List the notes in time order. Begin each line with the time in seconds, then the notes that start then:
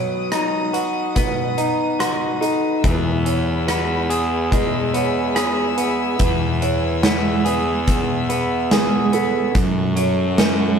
Already playing: B2 F#3 B4 C#5 D#5 F#5 D#6
0.32 D#4, cross-stick, closed hi-hat
0.73 F#4 B4, closed hi-hat
1.16 B3, kick, closed hi-hat
1.58 D#4 B4, closed hi-hat
1.99 F#4 B4, cross-stick, closed hi-hat
2.41 D#4 A4, closed hi-hat
2.83 E2 E5 G#5 E6, kick, closed hi-hat
3.25 E3 C#5, closed hi-hat
3.67 B3 B4, cross-stick, closed hi-hat
4.10 G#4, closed hi-hat
4.51 G#3 B4, kick, closed hi-hat
4.94 B3 C#5, closed hi-hat
5.35 G#4, cross-stick, closed hi-hat
5.77 B3 B4, closed hi-hat
6.19 E2 B4, kick, closed hi-hat
6.62 E3 C#5, closed hi-hat
7.03 B3, snare, closed hi-hat
7.45 G#4 B4, closed hi-hat
7.88 kick, closed hi-hat
8.29 B3 B4, closed hi-hat
8.71 G#4 B4, snare, closed hi-hat
9.12 B3 A4, closed hi-hat
9.54 F#2 A4 C#5 F#5 C#6, kick, closed hi-hat
9.96 F#3 C#5, closed hi-hat
10.38 C#4 B4, snare, closed hi-hat